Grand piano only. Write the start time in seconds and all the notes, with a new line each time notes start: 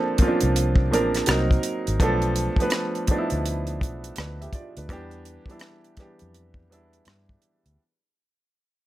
Already playing: F3 A#3 C4 D4 A4
0.19 F3 A#3 C4 C#4 F4
0.28 D4
0.91 F3 A#3 C4 D4 A#4
1.27 F#3 A#3 C4 D#4 A#4
2.00 F3 A3 B3 D4 A4
2.59 F3 A3 B3 D4 B4
3.09 F3 A3 B3 D4 D#4
3.18 E4
4.19 D4 B4
4.41 G4 E5
4.55 F4 D5
4.78 D4 B4
4.89 E3 G3 B3 D4 G4
5.48 E3 G3 B3 D4 E4
5.98 E3 G3 B3 D4 G4
6.70 E3 G3 B3 D4 E4